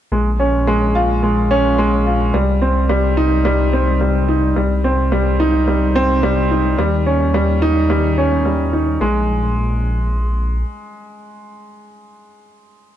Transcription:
0.12 2.31 A#1 medium
0.12 0.28 G#3 medium
0.40 0.66 C#4 medium
0.67 0.94 G#3 loud
0.95 1.22 F4 loud
1.23 1.39 G#3 medium
1.51 1.67 C#4 loud
1.78 2.05 G#3 loud
2.06 2.22 F4 medium
2.34 4.54 C2 loud
2.34 2.50 G3 loud
2.62 2.88 C4 medium
2.89 3.05 G3 loud
3.17 3.44 D#4 loud
3.45 3.72 G3 loud
3.73 3.99 C4 medium
4.01 4.27 G3 medium
4.28 4.44 D#4 medium
4.56 6.76 C2 medium
4.56 4.72 G3 medium
4.84 5.11 C4 medium
5.12 5.38 G3 loud
5.40 5.66 D#4 loud
5.68 5.83 G3 medium
5.95 6.11 C4 loud
6.23 6.49 G3 loud
6.51 6.67 D#4 medium
6.78 8.98 D#2 medium
6.78 6.94 G3 loud
7.06 7.33 C#4 medium
7.34 7.50 G3 loud
7.62 7.88 D#4 loud
7.90 8.16 G3 loud
8.18 8.44 C#4 medium
8.45 8.72 G3 medium
8.73 8.89 D#4 medium
9.01 10.63 A#1 loud
9.01 9.27 G#3 loud

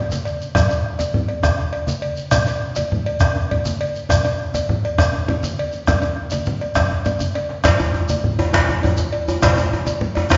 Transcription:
0.11 djembe slap medium
0.11 high conga medium
0.11 shekere soft
0.25 bombo rim soft
0.25 cowbell soft
0.25 shekere soft
0.41 shekere soft
0.55 bombo rim medium
0.55 bombo low loud
0.55 cowbell medium
0.55 djembe slap medium
0.55 low conga medium
0.55 djembe bass medium
0.55 shekere medium
0.69 cowbell soft
0.69 djembe slap soft
0.69 djembe tone medium
0.69 shekere soft
0.84 bombo rim soft
0.84 high conga soft
0.99 cowbell soft
0.99 djembe slap soft
0.99 high conga medium
0.99 shekere soft
1.14 low conga medium
1.28 cowbell soft
1.28 djembe slap soft
1.43 bombo rim medium
1.43 bombo low loud
1.43 cowbell soft
1.43 djembe slap medium
1.43 high conga soft
1.43 djembe bass medium
1.43 shekere medium
1.58 bombo rim soft
1.58 djembe tone medium
1.73 cowbell medium
1.87 djembe slap medium
1.87 high conga medium
1.87 shekere soft
2.02 cowbell medium
2.17 djembe slap soft
2.17 shekere soft
2.31 bombo rim medium
2.31 bombo low medium
2.31 cowbell medium
2.31 djembe slap medium
2.31 djembe bass medium
2.31 low conga medium
2.31 shekere medium
2.46 cowbell medium
2.46 djembe slap soft
2.46 djembe tone soft
2.46 shekere soft
2.62 bombo rim soft
2.62 high conga soft
2.76 cowbell medium
2.76 djembe slap medium
2.76 high conga medium
2.76 shekere soft
2.92 low conga medium
3.06 cowbell medium
3.06 djembe slap soft
3.20 bombo rim medium
3.20 bombo low medium
3.20 cowbell medium
3.20 djembe slap medium
3.20 high conga soft
3.20 djembe bass medium
3.20 shekere medium
3.36 bombo rim soft
3.36 djembe tone medium
3.51 cowbell medium
3.51 low conga medium
3.65 djembe slap medium
3.65 high conga medium
3.65 shekere soft
3.81 cowbell medium
3.95 djembe slap soft
3.95 shekere soft
4.09 bombo rim medium
4.09 bombo low medium
4.09 cowbell medium
4.09 djembe slap medium
4.09 djembe bass medium
4.09 low conga medium
4.09 shekere medium
4.25 cowbell soft
4.25 djembe slap soft
4.25 djembe tone medium
4.25 shekere soft
4.40 bombo rim soft
4.40 high conga soft
4.54 cowbell medium
4.54 djembe slap medium
4.54 high conga medium
4.54 shekere soft
4.69 low conga medium
4.84 cowbell medium
4.84 djembe slap soft
4.98 bombo rim medium
4.98 bombo low medium
4.98 cowbell medium
4.98 djembe slap medium
4.98 high conga soft
4.98 djembe bass medium
4.98 shekere soft
5.13 djembe tone medium
5.28 cowbell soft
5.28 low conga medium
5.43 djembe slap medium
5.43 high conga medium
5.43 shekere soft
5.59 cowbell medium
5.72 djembe slap soft
5.72 shekere soft
5.87 bombo rim medium
5.87 bombo low medium
5.87 cowbell medium
5.87 djembe slap medium
5.87 djembe bass medium
5.87 low conga medium
5.87 shekere soft
6.02 bombo rim soft
6.02 cowbell soft
6.02 djembe tone medium
6.02 shekere soft
6.16 bombo rim soft
6.16 djembe slap soft
6.16 high conga soft
6.31 cowbell soft
6.31 djembe slap medium
6.31 high conga medium
6.31 shekere soft
6.45 djembe slap soft
6.45 low conga medium
6.45 shekere soft
6.61 cowbell soft
6.61 high conga soft
6.75 bombo rim medium
6.75 bombo low medium
6.75 cowbell soft
6.75 djembe slap medium
6.75 djembe bass medium
6.75 shekere soft
6.91 bombo rim soft
6.91 djembe bass soft
7.05 bombo rim soft
7.05 cowbell soft
7.05 djembe bass soft
7.05 low conga medium
7.05 shekere soft
7.20 bombo rim soft
7.20 high conga medium
7.20 djembe bass medium
7.20 shekere soft
7.34 bombo rim soft
7.34 cowbell medium
7.34 djembe slap medium
7.49 bombo rim soft
7.49 djembe slap medium
7.64 bombo rim medium
7.64 bombo low medium
7.64 cowbell medium
7.64 djembe slap medium
7.64 djembe slap loud
7.64 djembe bass medium
7.64 low conga medium
7.64 shekere medium
7.79 cowbell soft
7.79 djembe slap soft
7.79 djembe tone medium
7.79 shekere soft
7.94 bombo rim soft
7.94 djembe tone medium
7.94 high conga soft
8.09 cowbell medium
8.09 djembe slap medium
8.09 high conga medium
8.09 shekere soft
8.24 low conga medium
8.39 cowbell soft
8.39 djembe slap soft
8.39 djembe tone medium
8.53 bombo rim medium
8.53 bombo low medium
8.53 cowbell medium
8.53 djembe slap medium
8.53 djembe slap loud
8.53 high conga soft
8.53 djembe bass medium
8.53 shekere soft
8.69 bombo rim soft
8.69 djembe tone medium
8.83 cowbell soft
8.83 djembe tone medium
8.83 low conga medium
8.97 djembe slap medium
8.97 high conga medium
8.97 shekere soft
9.12 cowbell medium
9.28 djembe slap soft
9.28 djembe tone medium
9.28 shekere soft
9.42 bombo rim medium
9.42 bombo low medium
9.42 cowbell medium
9.42 djembe slap medium
9.42 djembe slap loud
9.42 djembe bass medium
9.42 low conga medium
9.42 shekere medium
9.57 cowbell soft
9.57 djembe slap soft
9.57 djembe tone medium
9.57 shekere soft
9.73 bombo rim soft
9.73 high conga soft
9.73 djembe tone medium
9.87 cowbell soft
9.87 djembe slap medium
9.87 high conga medium
9.87 shekere soft
10.01 low conga medium
10.15 cowbell medium
10.15 djembe slap soft
10.15 djembe tone medium
10.30 bombo rim medium
10.30 bombo low medium
10.30 cowbell soft
10.30 djembe slap medium
10.30 djembe slap loud
10.30 high conga soft
10.30 djembe bass medium
10.30 shekere soft

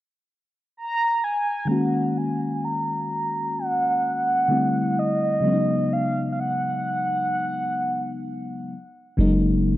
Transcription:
0.77 1.26 A#5 loud
1.24 1.72 G#5 medium
1.66 4.44 D#3 medium
1.66 4.45 G#3 medium
1.66 4.46 A#3 medium
1.70 4.47 C#4 medium
1.70 4.47 F#4 medium
1.70 2.19 F#5 loud
2.18 2.66 G#5 loud
2.65 3.60 A#5 loud
3.59 5.01 F#5 loud
4.48 5.43 D3 medium
4.48 5.43 G3 medium
4.48 5.43 A3 medium
4.48 5.44 C4 medium
4.48 5.44 E4 medium
4.99 5.94 D#5 medium
5.41 8.66 C#3 medium
5.41 8.67 F#3 medium
5.41 8.68 G#3 medium
5.45 8.68 B3 medium
5.45 5.52 C#4 medium
5.53 8.72 D#4 medium
5.93 6.31 F5 medium
6.32 6.41 F5 medium
6.39 8.73 F#5 medium
9.17 9.77 F#1 loud
9.17 9.77 C#3 medium
9.17 9.77 F#3 medium
9.17 9.77 G#3 medium
9.17 9.77 A#3 medium
9.17 9.77 D#4 loud

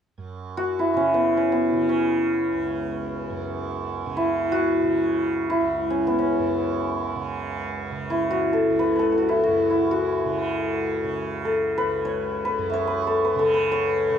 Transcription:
0.18 3.30 F#2 soft
0.57 3.82 F#4 medium
0.79 0.93 E4 medium
0.94 1.73 C#3 soft
0.94 1.37 C#4 medium
0.94 4.16 E4 soft
1.14 1.52 B3 medium
1.37 1.89 C#4 medium
1.52 5.64 B3 medium
1.73 4.06 C#3 soft
1.89 5.75 C#4 medium
2.52 5.60 C#2 soft
3.30 6.39 F#2 medium
4.06 4.83 C#3 soft
4.17 5.49 E4 medium
4.52 7.77 F#4 medium
4.83 7.15 C#3 soft
5.50 8.10 E4 medium
5.61 8.70 C#2 medium
5.90 6.18 C#4 medium
6.07 10.19 B3 medium
6.19 10.05 C#4 medium
6.39 9.47 F#2 soft
7.15 7.92 C#3 soft
7.92 10.25 C#3 soft
8.10 9.28 E4 medium
8.30 9.17 F#4 medium
8.53 8.99 A4 medium
8.70 11.81 C#2 soft
8.79 8.95 B4 medium
8.96 9.12 A4 medium
8.96 11.67 B4 soft
9.12 11.45 A4 soft
9.18 9.43 F#4 medium
9.29 9.70 E4 medium
9.44 9.91 F#4 medium
9.48 12.58 F#2 soft
9.70 13.17 E4 medium
9.91 13.16 F#4 medium
10.25 11.04 C#3 medium
11.04 13.35 C#3 soft
11.45 13.07 A4 medium
11.78 14.19 C#2 soft
11.78 12.45 B4 medium
12.05 12.73 C#5 medium
12.45 12.87 B4 medium
12.58 14.19 F#2 medium
12.70 13.71 C#5 medium
12.70 14.19 E5 soft
12.87 13.24 B4 medium
13.07 13.39 A4 medium
13.25 13.53 B4 medium
13.35 14.11 C#3 medium
13.35 14.19 A4 medium
13.54 14.19 B4 medium
13.72 14.19 C#5 medium
14.11 14.19 C#3 soft

